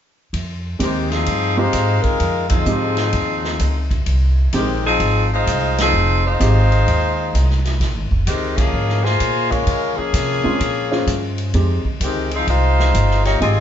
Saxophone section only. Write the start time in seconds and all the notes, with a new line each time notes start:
0.82 D#3 G#3 C4 G4
1.11 F3 C4 D#4 G#4
1.57 G#3 D#4 F4 C5
2.02 G#3 D#4 F4 A#4
2.49 F3 C4 D#4 G#4
4.56 D#3 G#3 C4 G4
4.86 F3 C4 D#4 G#4
5.33 G#3 D#4 F4 C5
5.81 F3 C4 D#4 G#4
6.26 G#3 D#4 F4 C5
8.27 D#3 G#3 C4 G4
8.57 F3 A#3 C#4 G#4
9.04 A#3 F4 G#4 C5
9.50 G#3 C#4 F4 A#4
9.97 F3 A#3 C#4 G#4
12.04 D#3 G#3 C4 G4
12.35 F3 C4 D#4 G#4
12.49 G#3 D#4 F4 C5
13.26 A#3 D#4 G4 C#5
13.42 C4 F4 G#4 D#5